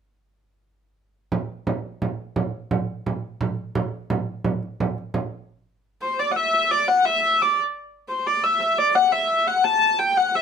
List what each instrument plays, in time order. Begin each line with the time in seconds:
1.32 frame drum
1.67 frame drum
2.02 frame drum
2.36 frame drum
2.71 frame drum
3.06 frame drum
3.41 frame drum
3.75 frame drum
4.10 frame drum
4.44 frame drum
4.63 frame drum
4.80 frame drum
4.98 frame drum
5.14 frame drum
6.02 hurdy-gurdy C5
6.20 hurdy-gurdy D5
6.32 hurdy-gurdy F#5
6.36 hurdy-gurdy E5
6.54 hurdy-gurdy E5
6.71 hurdy-gurdy D5
6.88 hurdy-gurdy F#5
7.05 hurdy-gurdy E5
7.42 hurdy-gurdy D5
8.09 hurdy-gurdy C5
8.27 hurdy-gurdy D5
8.44 hurdy-gurdy E5
8.60 hurdy-gurdy E5
8.79 hurdy-gurdy D5
8.95 hurdy-gurdy F#5
9.12 hurdy-gurdy E5
9.47 hurdy-gurdy F#5
9.64 hurdy-gurdy A5
9.99 hurdy-gurdy G5
10.17 hurdy-gurdy F#5
10.35 hurdy-gurdy E5